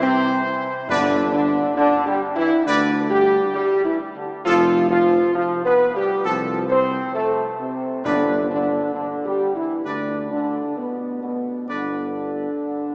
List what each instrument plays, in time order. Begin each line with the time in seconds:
Already playing: tuba C2
0.01 trombone section C3, french horn section C4, trumpet section C5
0.88 tuba G1, timpani G2, trombone section D3, french horn section D4, trumpet section B4 D5
1.32 trombone section D3, french horn section D4
1.77 trombone section D3, french horn section D4
2.06 trombone section G3, french horn section G4
2.36 trombone section E3, french horn section E4
2.65 tuba D2, trombone section D3, french horn section D4, trumpet section B4 D5
3.10 trombone section G3, french horn section G4
3.54 trombone section G3, french horn section G4
3.85 trombone section E3, french horn section E4
4.15 trombone section D3, french horn section D4
4.45 tuba F1, trombone section F3, french horn section F4, trumpet section A4
4.90 trombone section F3, french horn section F4
5.35 trombone section F3, french horn section F4
5.65 trombone section B3, french horn section B4
5.95 trombone section G3, french horn section G4
6.25 tuba C2, trombone section F3, french horn section F4, trumpet section A4
6.70 trombone section C4, french horn section C5
7.15 trombone section A3, french horn section A4
7.59 trombone section C3, french horn section C4
8.05 tuba G1, timpani G2, trombone section D3, french horn section D4, trumpet section B4 D5
8.50 trombone section D3, french horn section D4
8.95 trombone section D3, french horn section D4
9.25 trombone section G3, french horn section G4
9.55 trombone section E3, french horn section E4
9.85 tuba D2, trombone section D3, french horn section D4, trumpet section B4 D5
10.31 trombone section D3, french horn section D4
10.77 trombone section B2, french horn section B3
11.23 trombone section B2, french horn section B3
11.69 tuba G1, trombone section D3, french horn section D4, trumpet section B4 D5